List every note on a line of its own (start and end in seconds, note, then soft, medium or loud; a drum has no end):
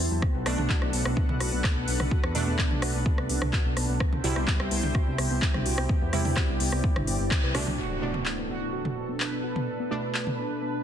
0.00 0.21 C3 medium
0.00 0.21 G3 medium
0.00 0.19 E4 medium
0.00 0.21 E4 loud
0.00 0.85 E4 medium
0.00 0.19 G4 medium
0.00 0.19 C5 medium
0.00 0.22 C5 medium
0.00 0.22 G5 medium
0.00 0.21 A5 medium
0.11 0.20 E2 medium
0.11 0.20 F#3 medium
0.22 0.32 B3 medium
0.22 5.10 D4 medium
0.22 3.97 D4 medium
0.22 3.97 A4 medium
0.22 3.97 B4 medium
0.22 3.97 F#5 medium
0.22 kick loud
0.22 cross-stick medium
0.35 0.44 B1 medium
0.35 0.44 B3 loud
0.46 0.56 B1 loud
0.46 2.32 B2 medium
0.46 2.32 A3 medium
0.46 0.58 B3 medium
0.46 2.32 D4 loud
0.46 cross-stick medium
0.46 open hi-hat loud
0.51 4.00 B4 medium
0.58 0.67 B1 medium
0.58 0.69 D4 medium
0.58 mid tom medium
0.70 0.75 F#4 loud
0.70 kick loud
0.70 clap medium
0.82 0.91 B1 medium
0.82 0.91 B3 medium
0.82 cross-stick medium
0.93 1.03 B1 medium
0.93 1.03 B3 medium
0.93 open hi-hat loud
1.05 1.15 B1 loud
1.05 1.14 B3 loud
1.05 cross-stick medium
1.17 1.29 B3 medium
1.17 kick loud
1.29 1.38 B1 medium
1.29 1.40 D4 medium
1.29 mid tom medium
1.40 1.50 B1 loud
1.40 1.46 F#4 loud
1.40 cross-stick medium
1.40 open hi-hat loud
1.50 1.62 B1 medium
1.50 1.62 B3 medium
1.50 4.92 A5 medium
1.64 kick loud
1.64 cross-stick medium
1.64 clap loud
1.76 1.86 B1 medium
1.76 1.85 B3 loud
1.88 1.98 B1 loud
1.88 1.99 B3 medium
1.88 open hi-hat loud
2.00 2.09 B1 medium
2.00 2.11 D4 medium
2.00 cross-stick medium
2.00 mid tom medium
2.11 2.17 F#4 loud
2.11 kick loud
2.24 2.33 E2 medium
2.24 2.33 B3 medium
2.24 cross-stick medium
2.35 2.45 E2 loud
2.35 3.99 B2 loud
2.35 3.99 A3 medium
2.35 2.45 B3 medium
2.35 3.99 D4 loud
2.35 open hi-hat loud
2.47 2.56 E2 medium
2.47 2.56 B3 loud
2.59 2.70 B3 medium
2.59 kick loud
2.59 cross-stick medium
2.59 clap loud
2.71 2.80 B1 medium
2.71 2.82 D4 medium
2.71 mid tom medium
2.82 2.92 B1 loud
2.82 2.88 F#4 loud
2.82 cross-stick medium
2.82 open hi-hat loud
2.94 3.04 B1 medium
2.94 3.03 B3 medium
3.06 3.15 B3 medium
3.06 kick loud
3.18 3.27 C2 medium
3.18 3.27 B3 loud
3.18 cross-stick medium
3.29 3.39 C2 loud
3.29 3.41 B3 medium
3.29 open hi-hat loud
3.42 3.51 C2 medium
3.42 3.53 D4 medium
3.42 cross-stick medium
3.42 mid tom loud
3.53 3.59 F#4 loud
3.53 kick loud
3.53 clap loud
3.65 3.75 B1 medium
3.65 3.74 B3 medium
3.77 3.87 B1 loud
3.77 3.86 B3 medium
3.77 cross-stick medium
3.77 open hi-hat loud
3.89 3.98 B1 medium
3.89 3.98 B3 loud
4.00 4.12 B3 medium
4.00 9.30 E4 medium
4.00 7.75 E4 medium
4.00 7.75 G4 medium
4.00 5.87 C5 medium
4.00 7.75 G5 medium
4.00 kick loud
4.00 cross-stick medium
4.13 4.22 C2 medium
4.13 4.23 D4 medium
4.13 mid tom medium
4.24 4.34 C2 loud
4.24 6.10 C3 loud
4.24 6.10 G3 medium
4.24 6.10 E4 loud
4.24 4.30 F#4 loud
4.24 7.78 C5 medium
4.24 open hi-hat loud
4.35 4.45 C2 medium
4.35 4.45 B3 medium
4.35 7.78 G5 medium
4.35 cross-stick soft
4.48 4.57 B3 medium
4.48 kick loud
4.48 clap loud
4.60 4.69 C2 medium
4.60 4.69 B3 loud
4.60 cross-stick medium
4.71 4.81 C2 loud
4.71 4.83 B3 medium
4.71 open hi-hat loud
4.83 4.93 C2 medium
4.83 4.94 D4 medium
4.83 mid tom medium
4.95 5.01 F#4 loud
4.95 kick loud
4.95 cross-stick soft
5.07 5.16 C2 medium
5.07 5.16 B3 medium
5.18 5.28 C2 loud
5.18 5.28 B3 medium
5.18 cross-stick medium
5.18 open hi-hat loud
5.31 5.40 C2 medium
5.31 5.40 B3 loud
5.42 5.54 B3 medium
5.42 kick loud
5.42 clap loud
5.54 5.64 C2 medium
5.54 5.65 D4 medium
5.54 cross-stick soft
5.54 mid tom medium
5.66 5.76 C2 loud
5.66 5.71 F#4 loud
5.66 open hi-hat loud
5.78 5.87 C2 medium
5.78 5.87 B3 medium
5.78 cross-stick medium
5.89 5.99 B3 medium
5.89 7.76 D5 medium
5.89 kick loud
6.02 6.11 E2 medium
6.02 6.10 B3 loud
6.13 6.23 E2 loud
6.13 7.52 C3 loud
6.13 7.52 G3 medium
6.13 6.25 B3 medium
6.13 7.52 E4 loud
6.13 cross-stick medium
6.13 open hi-hat loud
6.25 6.34 E2 medium
6.25 6.36 D4 medium
6.25 mid tom medium
6.25 open hi-hat medium
6.37 6.42 F#4 loud
6.37 kick loud
6.37 cross-stick medium
6.37 clap loud
6.49 6.58 C2 medium
6.49 6.58 B3 medium
6.60 6.70 C2 loud
6.60 6.70 B3 medium
6.60 open hi-hat loud
6.72 6.82 C2 medium
6.72 6.81 B3 loud
6.72 cross-stick soft
6.84 6.95 B3 medium
6.84 kick loud
6.96 7.05 G1 medium
6.96 7.07 D4 medium
6.96 cross-stick medium
6.96 mid tom medium
7.07 7.17 G1 loud
7.07 7.13 B3 medium
7.07 open hi-hat loud
7.20 7.29 G1 medium
7.20 7.25 B3 medium
7.31 7.41 C4 medium
7.31 kick loud
7.31 cross-stick soft
7.31 clap loud
7.43 7.52 C2 medium
7.43 7.52 B4 medium
7.55 7.65 C2 loud
7.55 7.99 B2 loud
7.55 7.99 A3 medium
7.55 7.99 D4 loud
7.55 7.66 F#4 medium
7.55 cross-stick medium
7.55 open hi-hat loud
7.67 7.76 C2 medium
7.67 7.72 F#3 medium
7.67 mid tom medium
7.78 10.83 B2 medium
7.78 7.90 B3 medium
7.78 10.83 B3 medium
7.78 10.83 D4 medium
7.78 8.40 F#4 loud
7.78 10.83 A4 medium
7.78 impact medium
7.91 8.01 D4 medium
8.02 9.88 B2 medium
8.02 9.88 A3 medium
8.02 9.88 D4 loud
8.02 8.08 F#4 medium
8.09 10.83 B4 medium
8.14 8.23 B3 medium
8.14 mid tom medium
8.24 8.35 B3 medium
8.24 10.83 A5 medium
8.24 clap loud
8.38 8.47 B3 loud
8.49 8.61 B3 medium
8.49 9.11 F#4 medium
8.61 8.72 D4 medium
8.73 8.79 F#4 loud
8.85 8.94 B3 medium
8.85 mid tom medium
8.96 9.06 B3 medium
9.09 9.18 B3 loud
9.20 9.32 B3 medium
9.20 10.83 B4 loud
9.20 clap loud
9.32 9.43 D4 medium
9.44 9.49 F#4 loud
9.56 9.65 B3 medium
9.56 mid tom medium
9.67 9.77 B3 medium
9.80 9.88 B3 loud
9.91 10.83 B2 medium
9.91 10.83 A3 medium
9.91 10.03 B3 medium
9.91 10.83 D4 loud
10.03 10.14 D4 medium
10.15 10.20 F#4 loud
10.15 clap loud
10.27 10.36 B3 medium
10.27 mid tom medium
10.38 10.48 B3 medium
10.50 10.59 B3 medium
10.62 10.73 B3 medium
10.74 10.83 D4 medium